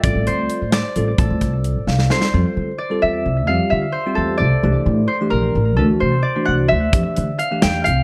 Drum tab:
HH |x-x-x-x-x-|x-x-x-----|----------|----------|
SD |------o---|------oooo|----------|----------|
BD |o---------|o-o-------|----------|----------|

HH |----------|----------|x-x-x-x-x-|
SD |----------|----------|------o---|
BD |----------|----------|o---------|